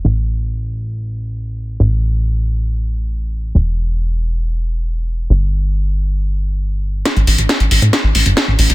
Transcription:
<<
  \new Staff \with { instrumentName = "Analog synth bass" } { \clef bass \time 4/4 \key e \phrygian \tempo 4 = 137 a,,1 | a,,1 | e,,1 | g,,1 |
r16 a,,16 a,,16 a,,16 r16 a,,16 a,,16 a,16 r16 a,,16 a,,16 g,,16 r16 a,,16 a,,16 a,,16 | }
  \new DrumStaff \with { instrumentName = "Drums" } \drummode { \time 4/4 r4 r4 r4 r4 | r4 r4 r4 r4 | r4 r4 r4 r4 | r4 r4 r4 r4 |
<hh sn>16 hh16 hho16 hh16 <hh sn>16 hh16 hho16 hh16 <hh sn>8 hho16 hh16 <hh sn>8 hho16 hh16 | }
>>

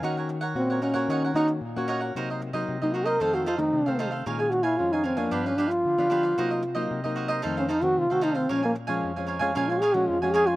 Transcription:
<<
  \new Staff \with { instrumentName = "Cavaquinho" } { \time 4/4 \key bes \minor \tempo 4 = 113 <ees' bes' des'' ges''>16 <bes' des'' ges''>16 r16 <bes' des'' ges''>8 <bes' des'' ges''>16 <ees' bes' des'' ges''>16 <bes' des'' ges''>16 <ees' bes' des'' ges''>16 <bes' des'' ges''>16 <ees' bes' des'' ges''>16 r8 <bes' des'' ges''>16 <ees' bes' des'' ges''>16 <bes' des'' ges''>16 | <ges' bes' c'' ees''>16 <bes' c'' ees''>16 r16 <bes' c'' ees''>8 <bes' c'' ees''>16 <ges' bes' c'' ees''>16 <bes' c'' ees''>16 <ees' a' c'' f''>16 <a' c'' f''>16 <ees' a' c'' f''>16 r8 <a' c'' f''>16 <ees' a' c'' f''>16 <a' c'' f''>16 | <bes' des'' f'' aes''>16 <des'' f'' aes''>16 r16 <des'' f'' aes''>8 <des'' f'' aes''>16 <bes' des'' f'' aes''>16 <des'' f'' aes''>16 <d' g' b' f''>16 <g' b' f''>16 <d' g' b' f''>16 r8 <g' b' f''>16 <d' g' b' f''>16 <g' b' f''>16 | <ges' bes' c'' ees''>16 <bes' c'' ees''>16 r16 <bes' c'' ees''>8 <bes' c'' ees''>16 <ges' bes' c'' ees''>16 <bes' c'' ees''>16 <ees' a' c'' f''>16 <a' c'' f''>16 <ees' a' c'' f''>16 r8 <a' c'' f''>16 <ees' a' c'' f''>16 <a' c'' f''>16 |
<bes' des'' f'' aes''>16 <des'' f'' aes''>16 r16 <des'' f'' aes''>8 <des'' f'' aes''>16 <bes' des'' f'' aes''>16 <des'' f'' aes''>16 <bes' des'' f'' aes''>16 <des'' f'' aes''>16 <bes' des'' f'' aes''>16 r8 <des'' f'' aes''>16 <bes' des'' f'' aes''>16 <des'' f'' aes''>16 | }
  \new Staff \with { instrumentName = "Trombone" } { \time 4/4 \key bes \minor r4 c'8 des'4 ees'8 r4 | r4 r16 ees'16 ges'16 bes'16 a'16 ges'16 f'16 ees'4 r16 | r16 aes'16 ges'16 e'16 f'16 ees'16 c'16 bes16 b16 des'16 d'16 f'4~ f'16~ | f'4~ f'16 r4 des'16 ees'16 ges'16 f'16 ges'16 ees'16 c'16 |
des'16 bes16 r4. des'16 f'16 aes'16 ges'16 f'16 ges'16 aes'16 f'16 | }
  \new Staff \with { instrumentName = "Nylon-string guitar" } { \time 4/4 \key bes \minor << { <bes des' ges'>8. r16 <bes des' ges'>8. <bes des' ges'>8. <bes des' ges'>8 r16 <bes des' ges'>8. | <ges bes ees'>8. <ges bes ees'>8 <ges bes ees'>8. <ees a c'>8 r16 <ees a c'>8 <ees a c'>8. | <ees aes des'>8. r16 <ees aes des'>8. <f ces' d'>8. <f b d'>8. <f b d'>16 <f b d'>8 | <ges bes ees'>8 r16 <ges bes ees'>8 <ges bes ees'>8. <ees a c'>8 r16 <ees a c'>8 <ees a c'>8. |
<f aes des'>8 r16 <f aes des'>8 <f aes des'>8 <f aes des'>16 <f aes des'>8 r16 <f aes des'>8 <f aes des'>8. | } \\ { ees4 bes,4 ees4 bes,4 | c4 c4 f,4 c4 | bes,4 f,4 g,4 d4 | c4 c4 f,4 c4 |
bes,4 f,4 bes,4 f,4 | } >> }
>>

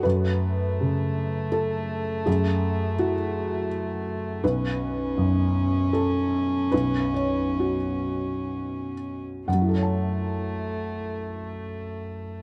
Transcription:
<<
  \new Staff \with { instrumentName = "Felt piano" } { \time 3/4 \key fis \minor \tempo 4 = 79 b'2 a'4 | gis'4 fis'4 r4 | b'2 a'4 | b'8 cis''2 r8 |
<fis, fis e' a' cis'' fis'' a''>2. | }
  \new Staff \with { instrumentName = "Felt piano" } { \clef bass \time 3/4 \key fis \minor fis,4 cis2 | fis,4 e'2 | b,,4 fis,2 | b,,4 fis'2 |
r2. | }
  \new Staff \with { instrumentName = "Cello" } { \time 3/4 \key fis \minor a2.~ | a2. | cis'2.~ | cis'2~ cis'8. r16 |
a2. | }
>>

